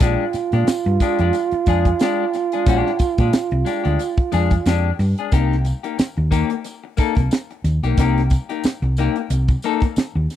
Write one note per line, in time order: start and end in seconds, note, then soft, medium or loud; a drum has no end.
0.00 0.15 A#1 loud
0.00 0.24 G#3 medium
0.00 0.24 D4 medium
0.00 4.95 F4 medium
0.00 0.25 G4 medium
0.00 kick loud
0.00 closed hi-hat loud
0.00 tambourine medium
0.33 muted fingered electric bass stroke soft
0.33 muted clean electric guitar stroke soft
0.33 closed hi-hat medium
0.33 tambourine medium
0.52 0.64 A#2 loud
0.52 0.67 G#3 soft
0.52 0.67 D4 medium
0.52 0.67 G4 medium
0.52 closed hi-hat medium
0.67 muted fingered electric bass stroke soft
0.67 muted clean electric guitar stroke soft
0.67 snare loud
0.67 closed hi-hat medium
0.67 tambourine loud
0.85 0.97 G2 loud
0.85 muted clean electric guitar stroke soft
0.85 closed hi-hat soft
1.00 1.20 G#3 medium
1.00 1.20 D4 medium
1.00 1.19 G4 medium
1.00 kick medium
1.00 closed hi-hat loud
1.00 tambourine medium
1.19 1.30 F2 medium
1.19 1.35 G#3 soft
1.19 1.35 D4 medium
1.19 1.35 G4 medium
1.19 closed hi-hat medium
1.33 closed hi-hat loud
1.33 tambourine medium
1.51 muted fingered electric bass stroke medium
1.51 muted clean electric guitar stroke soft
1.51 closed hi-hat soft
1.66 1.92 F2 medium
1.66 1.90 G#3 medium
1.66 1.87 D4 medium
1.66 1.87 G#4 medium
1.66 kick medium
1.66 closed hi-hat medium
1.66 tambourine medium
1.85 muted clean electric guitar stroke medium
1.85 kick medium
1.85 closed hi-hat medium
1.99 2.24 G#3 medium
1.99 2.24 D4 loud
1.99 2.25 G4 medium
1.99 snare loud
1.99 closed hi-hat medium
1.99 tambourine medium
2.33 muted clean electric guitar stroke soft
2.33 snare soft
2.33 closed hi-hat medium
2.33 tambourine soft
2.52 2.66 G#3 soft
2.52 2.67 D4 medium
2.52 2.67 G#4 soft
2.52 closed hi-hat medium
2.66 2.81 A#1 loud
2.66 2.90 G#3 loud
2.66 2.90 D4 loud
2.66 2.91 G4 loud
2.66 kick loud
2.66 closed hi-hat loud
2.66 tambourine medium
2.86 snare soft
2.99 muted fingered electric bass stroke soft
2.99 muted clean electric guitar stroke soft
2.99 kick loud
2.99 closed hi-hat medium
2.99 tambourine medium
3.18 3.29 A#2 medium
3.18 3.32 G#3 soft
3.18 3.32 D4 medium
3.18 3.33 G4 medium
3.18 kick loud
3.18 closed hi-hat medium
3.18 tambourine soft
3.33 muted fingered electric bass stroke soft
3.33 muted clean electric guitar stroke soft
3.33 snare loud
3.33 closed hi-hat medium
3.33 tambourine loud
3.51 3.63 C2 loud
3.51 muted clean electric guitar stroke soft
3.51 closed hi-hat soft
3.65 3.84 G#3 medium
3.65 3.83 D4 medium
3.65 3.82 G4 medium
3.65 closed hi-hat medium
3.65 tambourine medium
3.84 3.96 D2 medium
3.84 4.00 G#3 soft
3.84 3.99 D4 medium
3.84 3.99 G4 medium
3.84 closed hi-hat medium
3.99 closed hi-hat medium
3.99 tambourine medium
4.17 muted clean electric guitar stroke medium
4.17 muted fingered electric bass stroke soft
4.17 kick loud
4.17 closed hi-hat soft
4.32 4.58 F2 medium
4.32 4.55 G#3 medium
4.32 4.52 D4 medium
4.32 4.52 G#4 medium
4.32 closed hi-hat medium
4.32 tambourine medium
4.50 muted clean electric guitar stroke soft
4.50 kick loud
4.50 closed hi-hat soft
4.50 tambourine soft
4.66 4.91 F2 loud
4.66 4.89 G#3 medium
4.66 4.90 D4 loud
4.66 4.90 G4 medium
4.66 snare loud
4.66 closed hi-hat medium
4.66 tambourine medium
4.99 5.13 G2 loud
4.99 muted clean electric guitar stroke soft
4.99 snare soft
4.99 open hi-hat medium
4.99 tambourine soft
5.18 5.32 G#3 soft
5.18 5.32 D4 soft
5.18 5.33 G#4 medium
5.18 closed hi-hat medium
5.32 5.71 C2 loud
5.32 5.55 A#3 medium
5.32 5.55 D#4 medium
5.32 5.56 G4 medium
5.32 kick loud
5.32 closed hi-hat loud
5.32 tambourine medium
5.52 snare soft
5.65 muted clean electric guitar stroke soft
5.65 closed hi-hat medium
5.65 tambourine medium
5.83 5.97 A#3 soft
5.83 5.98 D#4 soft
5.83 5.98 G4 medium
5.83 closed hi-hat medium
5.98 muted clean electric guitar stroke soft
5.98 muted fingered electric bass stroke soft
5.98 snare loud
5.98 closed hi-hat medium
5.98 tambourine medium
6.16 6.42 D#2 medium
6.16 muted clean electric guitar stroke soft
6.16 closed hi-hat soft
6.31 6.54 A#3 medium
6.31 6.51 D#4 medium
6.31 6.50 G4 medium
6.31 kick medium
6.31 closed hi-hat loud
6.31 tambourine medium
6.50 muted clean electric guitar stroke soft
6.50 closed hi-hat medium
6.64 muted clean electric guitar stroke soft
6.64 closed hi-hat medium
6.64 tambourine medium
6.84 muted clean electric guitar stroke soft
6.97 7.20 A#3 medium
6.97 7.16 D#4 medium
6.97 7.16 A4 medium
6.97 muted fingered electric bass stroke soft
6.97 kick medium
6.97 closed hi-hat medium
6.97 tambourine medium
7.15 7.28 C2 medium
7.15 muted clean electric guitar stroke soft
7.15 kick medium
7.15 closed hi-hat soft
7.15 tambourine soft
7.31 muted clean electric guitar stroke soft
7.31 snare loud
7.31 closed hi-hat medium
7.31 tambourine medium
7.50 muted clean electric guitar stroke soft
7.50 closed hi-hat soft
7.64 7.78 D#2 medium
7.64 snare soft
7.64 closed hi-hat medium
7.64 tambourine soft
7.83 7.94 B1 medium
7.83 7.97 A#3 medium
7.83 7.98 D#4 medium
7.83 7.99 G4 medium
7.83 closed hi-hat medium
7.97 8.36 C2 loud
7.97 8.21 A#3 medium
7.97 8.21 D#4 medium
7.97 8.22 G4 loud
7.97 kick loud
7.97 closed hi-hat loud
7.97 tambourine medium
8.18 snare soft
8.18 closed hi-hat soft
8.30 muted clean electric guitar stroke soft
8.30 kick medium
8.30 closed hi-hat medium
8.30 tambourine medium
8.49 8.64 A#3 soft
8.49 8.64 D#4 medium
8.49 8.64 G4 medium
8.49 closed hi-hat medium
8.64 muted fingered electric bass stroke soft
8.64 muted clean electric guitar stroke medium
8.64 snare loud
8.64 closed hi-hat medium
8.64 tambourine medium
8.82 9.07 C2 medium
8.82 muted clean electric guitar stroke soft
8.82 closed hi-hat soft
8.97 9.20 A#3 medium
8.97 9.17 D#4 medium
8.97 9.16 G4 loud
8.97 closed hi-hat medium
8.97 tambourine medium
9.16 muted clean electric guitar stroke soft
9.16 closed hi-hat soft
9.30 9.55 C2 medium
9.30 muted clean electric guitar stroke soft
9.30 closed hi-hat loud
9.30 tambourine medium
9.48 muted clean electric guitar stroke soft
9.48 kick loud
9.48 closed hi-hat soft
9.48 tambourine soft
9.62 9.86 A#3 medium
9.62 9.83 D#4 loud
9.62 9.83 A4 loud
9.62 closed hi-hat medium
9.62 tambourine medium
9.80 muted clean electric guitar stroke soft
9.80 kick loud
9.80 closed hi-hat medium
9.80 tambourine soft
9.96 muted fingered electric bass stroke medium
9.96 muted clean electric guitar stroke soft
9.96 snare loud
9.96 closed hi-hat medium
9.96 tambourine medium
10.15 10.26 D#2 medium
10.15 muted clean electric guitar stroke medium
10.30 snare soft
10.30 closed hi-hat medium
10.30 tambourine soft